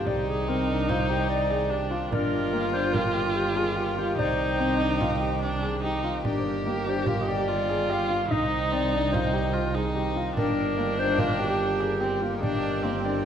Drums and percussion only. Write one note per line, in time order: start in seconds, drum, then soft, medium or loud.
0.07 frame drum medium
0.89 frame drum medium
1.51 frame drum soft
1.91 frame drum soft
2.12 frame drum medium
2.94 frame drum medium
3.36 frame drum soft
3.57 frame drum soft
3.98 frame drum soft
4.19 frame drum medium
4.40 frame drum soft
4.60 frame drum soft
4.81 frame drum soft
5.01 frame drum medium
5.63 frame drum soft
6.25 frame drum medium
7.06 frame drum medium
7.69 frame drum soft
8.10 frame drum soft
8.32 frame drum medium
8.52 frame drum soft
9.14 frame drum medium
9.55 frame drum soft
9.75 frame drum soft
10.17 frame drum soft
10.37 frame drum medium
10.57 frame drum soft
11.18 frame drum medium
11.60 frame drum soft
11.81 frame drum soft
12.22 frame drum soft
12.43 frame drum medium
12.64 frame drum soft
12.85 frame drum soft
13.05 frame drum soft